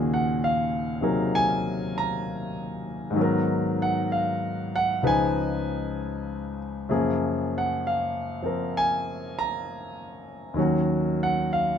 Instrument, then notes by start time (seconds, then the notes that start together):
grand piano
Already playing: D#2 A#2 C#3 D#3 F#4 G#4
0.14 F#5
0.44 F5
1.01 C3 F#3 D#4 G#4 A#4
1.35 G#5
1.98 A#5
3.11 G#2 D#3
3.16 F#3 B3
3.21 A#4
3.82 F#5
4.12 F5
4.76 F#5
5.03 C#2 C#3 F3 D#4 B4
5.07 G#5
6.89 F#2 C#3 F3 A#3 G#4
7.58 F#5
7.87 F5
8.42 F3 C4 A#4
8.77 G#5
9.39 A#5
10.54 D#2 D#3 F#3 C#4
10.59 F#4
11.23 F#5
11.53 F5